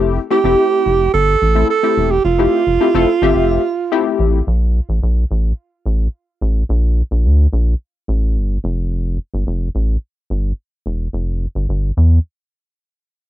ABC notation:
X:1
M:4/4
L:1/16
Q:1/4=108
K:F
V:1 name="Alto saxophone"
z2 G6 A4 A3 G | F12- F2 z2 | z16 | z16 |
z16 | z16 |]
V:2 name="Analog polysynth"
[A,CEG] z [A,CEG] [A,CEG]4- [A,CEG] z3 [A,CEA] z [A,CEG]2 z | z [A,CEG]2 z [A,CEG] [A,CEA] z [A,CGe]3 z2 [A,CEG]3 z | z16 | z16 |
z16 | z16 |]
V:3 name="Analog synth bass" clef=bass
F,,,2 z F,,, z2 F,,,2 G,,,2 A,,,2 z2 E,,,2 | F,,,2 z F,,, z F,,, z G,,, F,,,2 z4 A,,,2 | B,,,3 A,,, B,,,2 A,,,2 z2 A,,,2 z2 A,,,2 | B,,,3 B,,, D,,2 B,,,2 z2 A,,,2 G,,,2 F,,,2- |
F,,,3 G,,, F,,,2 A,,,2 z2 G,,,2 z2 E,,,2 | F,,,3 G,,, G,,,2 E,,2 z8 |]